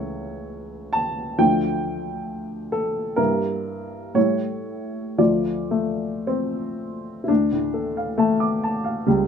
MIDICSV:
0, 0, Header, 1, 2, 480
1, 0, Start_track
1, 0, Key_signature, -1, "minor"
1, 0, Tempo, 898204
1, 734, Time_signature, 2, 2, 24, 8
1, 1701, Tempo, 1001669
1, 2661, Tempo, 1086957
1, 3141, Tempo, 1022147
1, 3621, Tempo, 881057
1, 4698, End_track
2, 0, Start_track
2, 0, Title_t, "Upright piano"
2, 0, Program_c, 0, 0
2, 0, Control_c, 0, 64, 127
2, 0, Note_on_c, 0, 37, 28
2, 0, Note_on_c, 0, 52, 26
2, 0, Note_on_c, 0, 57, 25
2, 0, Note_on_c, 0, 64, 24
2, 0, Note_on_c, 0, 73, 52
2, 494, Note_off_c, 0, 73, 0
2, 495, Note_on_c, 0, 81, 54
2, 716, Note_off_c, 0, 37, 0
2, 716, Note_off_c, 0, 52, 0
2, 717, Note_off_c, 0, 57, 0
2, 717, Note_off_c, 0, 64, 0
2, 735, Note_off_c, 0, 81, 0
2, 737, Note_on_c, 0, 38, 33
2, 740, Note_on_c, 0, 53, 27
2, 740, Note_on_c, 0, 62, 26
2, 741, Note_on_c, 0, 57, 25
2, 741, Note_on_c, 0, 79, 53
2, 742, Control_c, 0, 64, 0
2, 843, Control_c, 0, 64, 127
2, 1454, Note_on_c, 0, 69, 52
2, 1459, Note_off_c, 0, 79, 0
2, 1680, Note_off_c, 0, 38, 0
2, 1681, Note_off_c, 0, 53, 0
2, 1681, Note_off_c, 0, 57, 0
2, 1681, Note_off_c, 0, 62, 0
2, 1691, Note_on_c, 0, 70, 55
2, 1695, Note_on_c, 0, 43, 33
2, 1695, Note_on_c, 0, 58, 27
2, 1697, Note_on_c, 0, 64, 28
2, 1699, Note_off_c, 0, 69, 0
2, 1699, Note_on_c, 0, 55, 27
2, 1707, Control_c, 0, 64, 0
2, 1804, Control_c, 0, 64, 127
2, 2152, Note_off_c, 0, 43, 0
2, 2152, Note_off_c, 0, 58, 0
2, 2153, Note_off_c, 0, 64, 0
2, 2154, Note_off_c, 0, 55, 0
2, 2162, Note_on_c, 0, 45, 33
2, 2164, Note_on_c, 0, 73, 52
2, 2165, Note_off_c, 0, 70, 0
2, 2166, Note_on_c, 0, 55, 26
2, 2167, Note_on_c, 0, 64, 27
2, 2168, Note_on_c, 0, 57, 27
2, 2176, Control_c, 0, 64, 0
2, 2265, Control_c, 0, 64, 127
2, 2641, Note_off_c, 0, 45, 0
2, 2643, Note_off_c, 0, 55, 0
2, 2644, Note_off_c, 0, 57, 0
2, 2644, Note_off_c, 0, 64, 0
2, 2656, Note_on_c, 0, 38, 27
2, 2657, Note_off_c, 0, 73, 0
2, 2659, Note_on_c, 0, 53, 23
2, 2660, Note_on_c, 0, 65, 23
2, 2660, Note_on_c, 0, 74, 41
2, 2662, Note_on_c, 0, 57, 22
2, 2669, Control_c, 0, 64, 0
2, 2763, Control_c, 0, 64, 127
2, 2885, Note_off_c, 0, 57, 0
2, 2892, Note_on_c, 0, 57, 40
2, 3136, Note_off_c, 0, 57, 0
2, 3140, Note_off_c, 0, 74, 0
2, 3141, Note_on_c, 0, 60, 52
2, 3588, Note_off_c, 0, 60, 0
2, 3594, Note_on_c, 0, 64, 32
2, 3599, Note_off_c, 0, 38, 0
2, 3600, Note_off_c, 0, 53, 0
2, 3601, Note_off_c, 0, 65, 0
2, 3614, Note_on_c, 0, 62, 47
2, 3622, Note_on_c, 0, 38, 34
2, 3623, Note_off_c, 0, 64, 0
2, 3628, Control_c, 0, 64, 0
2, 3720, Control_c, 0, 64, 127
2, 3745, Note_on_c, 0, 45, 29
2, 3861, Note_on_c, 0, 69, 28
2, 3936, Note_off_c, 0, 45, 0
2, 3989, Note_on_c, 0, 77, 32
2, 4055, Note_off_c, 0, 69, 0
2, 4100, Note_off_c, 0, 62, 0
2, 4101, Note_on_c, 0, 57, 54
2, 4107, Note_on_c, 0, 81, 34
2, 4179, Note_off_c, 0, 77, 0
2, 4224, Note_on_c, 0, 86, 30
2, 4299, Note_off_c, 0, 81, 0
2, 4351, Note_on_c, 0, 81, 32
2, 4417, Note_off_c, 0, 86, 0
2, 4465, Note_on_c, 0, 77, 32
2, 4538, Note_off_c, 0, 81, 0
2, 4562, Note_off_c, 0, 38, 0
2, 4581, Note_off_c, 0, 57, 0
2, 4582, Note_off_c, 0, 77, 0
2, 4585, Note_on_c, 0, 55, 51
2, 4591, Note_on_c, 0, 37, 37
2, 4593, Control_c, 0, 64, 0
2, 4682, Control_c, 0, 64, 127
2, 4698, Note_off_c, 0, 37, 0
2, 4698, Note_off_c, 0, 55, 0
2, 4698, End_track
0, 0, End_of_file